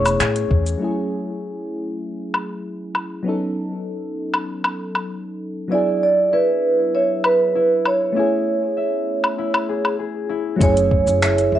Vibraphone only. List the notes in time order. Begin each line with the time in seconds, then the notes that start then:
Already playing: C#5
5.72 D5
6.03 D5
6.33 B4
6.95 C#5
7.25 B4
7.87 C#5
10.62 C#5
11.55 E5